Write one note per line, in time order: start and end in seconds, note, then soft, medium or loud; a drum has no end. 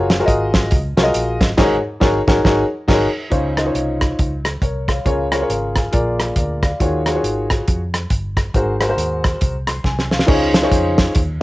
0.00 0.21 F#1 loud
0.00 0.12 F4 medium
0.00 0.13 F#4 medium
0.00 0.13 G#4 medium
0.00 0.13 A#4 medium
0.00 0.13 C#5 loud
0.10 snare loud
0.10 closed hi-hat medium
0.19 0.74 F4 medium
0.19 0.74 F#4 medium
0.19 0.74 G#4 medium
0.19 0.74 A#4 medium
0.19 0.24 C#5 medium
0.26 0.73 G#1 medium
0.26 0.77 D#5 loud
0.26 kick medium
0.26 closed hi-hat medium
0.54 kick medium
0.54 snare loud
0.54 closed hi-hat medium
0.71 0.94 C#2 medium
0.71 kick loud
0.71 closed hi-hat loud
0.97 1.12 C2 medium
0.97 1.44 F4 medium
0.97 1.44 F#4 medium
0.97 1.45 G#4 medium
0.97 1.45 A#4 medium
0.97 1.02 C#5 medium
0.97 snare loud
0.97 closed hi-hat medium
1.03 1.48 D#5 loud
1.14 1.37 A#1 medium
1.14 closed hi-hat loud
1.40 1.55 G#1 medium
1.40 kick medium
1.40 snare loud
1.40 closed hi-hat medium
1.57 1.76 G#1 loud
1.57 1.76 G#2 loud
1.57 1.75 D#4 loud
1.57 1.76 F#4 loud
1.57 1.76 G#4 loud
1.57 1.76 A#4 loud
1.57 1.76 C#5 loud
1.57 kick loud
1.57 snare loud
1.57 crash medium
2.00 2.19 G#1 loud
2.00 2.18 D#4 medium
2.00 2.19 F#4 medium
2.00 2.19 G#4 loud
2.00 2.19 A#4 medium
2.00 2.19 C#5 loud
2.00 kick loud
2.00 snare loud
2.27 2.39 G#1 medium
2.27 2.39 D#4 medium
2.27 2.39 F#4 loud
2.27 2.39 G#4 loud
2.27 2.40 A#4 loud
2.27 2.40 C#5 loud
2.27 kick loud
2.27 snare loud
2.44 2.63 G#1 loud
2.44 2.62 D#4 loud
2.44 2.62 F#4 loud
2.44 2.63 G#4 loud
2.44 2.63 A#4 loud
2.44 2.63 C#5 loud
2.44 kick loud
2.44 snare loud
2.88 3.06 G#1 loud
2.88 3.06 D#4 loud
2.88 3.06 F#4 loud
2.88 3.06 G#4 loud
2.88 3.06 A#4 loud
2.88 3.06 C#5 loud
2.88 kick loud
2.88 snare loud
2.88 crash medium
3.30 3.68 C#2 medium
3.30 3.97 C#3 medium
3.30 3.50 D#4 medium
3.30 3.51 F4 medium
3.30 3.51 C5 medium
3.30 3.51 C#5 medium
3.30 kick loud
3.30 closed hi-hat medium
3.57 3.63 D#4 medium
3.57 3.64 F4 medium
3.57 3.64 C5 medium
3.57 3.65 D#5 medium
3.57 cross-stick loud
3.57 closed hi-hat medium
3.65 4.30 D#4 medium
3.65 4.31 F4 medium
3.65 4.31 C5 medium
3.65 4.31 C#5 medium
3.75 4.12 C2 medium
3.75 closed hi-hat medium
4.01 kick medium
4.01 cross-stick loud
4.01 closed hi-hat medium
4.19 4.56 C#2 medium
4.19 kick loud
4.19 closed hi-hat medium
4.45 cross-stick loud
4.45 closed hi-hat medium
4.62 4.99 C2 medium
4.62 4.88 A#4 medium
4.62 4.87 C#5 medium
4.62 kick medium
4.62 closed hi-hat medium
4.88 5.05 C#5 soft
4.88 5.30 F5 medium
4.88 kick medium
4.88 cross-stick loud
4.88 closed hi-hat medium
5.05 5.43 C#2 medium
5.05 5.72 C#3 medium
5.05 5.25 F4 medium
5.05 5.25 G#4 medium
5.05 5.26 A#4 medium
5.05 5.26 C#5 medium
5.05 kick loud
5.05 closed hi-hat medium
5.31 5.38 F4 medium
5.31 5.38 G#4 medium
5.31 5.39 A#4 medium
5.31 5.39 C#5 medium
5.31 cross-stick loud
5.31 closed hi-hat medium
5.41 5.90 F4 medium
5.41 5.91 G#4 medium
5.41 5.91 A#4 medium
5.41 5.49 C#5 medium
5.49 5.86 G#1 medium
5.49 5.75 C#5 soft
5.49 5.75 F5 medium
5.49 closed hi-hat medium
5.76 6.18 F5 soft
5.76 6.17 G#5 medium
5.76 kick medium
5.76 cross-stick loud
5.76 closed hi-hat medium
5.92 6.30 A#1 medium
5.92 6.59 A#2 medium
5.92 6.66 F4 medium
5.92 6.66 G#4 medium
5.92 6.36 A#4 medium
5.92 6.35 D5 medium
5.92 kick loud
5.92 closed hi-hat medium
6.20 cross-stick loud
6.20 closed hi-hat medium
6.36 6.73 D2 medium
6.36 6.62 A#4 medium
6.36 6.62 D5 medium
6.36 kick medium
6.36 closed hi-hat medium
6.63 7.05 D5 medium
6.63 7.04 F5 medium
6.63 kick medium
6.63 cross-stick loud
6.63 closed hi-hat medium
6.80 7.17 D#2 medium
6.80 7.46 D#3 medium
6.80 7.00 F4 medium
6.80 7.00 F#4 medium
6.80 7.00 G#4 medium
6.80 7.00 C#5 medium
6.80 kick loud
6.80 closed hi-hat medium
7.06 7.13 F4 medium
7.06 7.13 F#4 medium
7.06 7.13 G#4 medium
7.06 7.13 C#5 medium
7.06 cross-stick medium
7.06 closed hi-hat medium
7.14 7.79 F4 medium
7.14 7.79 F#4 medium
7.14 7.80 G#4 medium
7.14 7.80 C#5 medium
7.23 7.60 G#1 medium
7.23 closed hi-hat medium
7.50 kick medium
7.50 cross-stick loud
7.50 closed hi-hat medium
7.68 8.05 F2 medium
7.68 kick loud
7.68 closed hi-hat medium
7.94 cross-stick medium
7.94 closed hi-hat medium
8.10 8.48 G1 medium
8.10 kick medium
8.10 closed hi-hat medium
8.37 kick medium
8.37 cross-stick medium
8.37 closed hi-hat medium
8.54 8.91 G#1 medium
8.54 9.20 G#2 medium
8.54 8.74 F#4 medium
8.54 8.74 G#4 medium
8.54 8.74 A#4 medium
8.54 8.75 C5 medium
8.54 kick loud
8.54 closed hi-hat medium
8.80 8.87 F#4 medium
8.80 8.87 G#4 medium
8.80 8.87 A#4 medium
8.80 8.88 C5 medium
8.80 cross-stick medium
8.80 closed hi-hat medium
8.88 9.53 F#4 medium
8.88 9.53 G#4 medium
8.88 9.54 A#4 medium
8.88 9.54 C5 medium
8.97 9.34 D#2 medium
8.97 closed hi-hat medium
9.24 kick medium
9.24 cross-stick loud
9.24 closed hi-hat medium
9.41 9.78 C2 medium
9.41 kick loud
9.41 closed hi-hat medium
9.67 9.84 C6 medium
9.67 cross-stick medium
9.67 closed hi-hat medium
9.84 10.21 C2 medium
9.84 10.09 G#5 medium
9.84 kick medium
9.84 snare soft
9.99 snare medium
10.10 10.27 F5 medium
10.10 snare medium
10.19 snare medium
10.26 10.65 C#2 loud
10.26 10.93 C#3 medium
10.26 10.55 D#4 medium
10.26 10.56 F4 medium
10.26 10.56 G#4 medium
10.26 10.56 C5 medium
10.26 10.56 C#5 loud
10.26 kick loud
10.26 crash loud
10.54 snare loud
10.54 closed hi-hat loud
10.62 11.17 D#4 medium
10.62 11.17 F4 medium
10.62 11.17 G#4 medium
10.62 11.18 C5 medium
10.62 11.18 C#5 loud
10.72 11.08 F2 loud
10.72 kick medium
10.72 closed hi-hat medium
10.98 kick medium
10.98 snare loud
10.98 closed hi-hat medium
11.15 11.38 D#2 loud
11.15 kick loud
11.15 closed hi-hat loud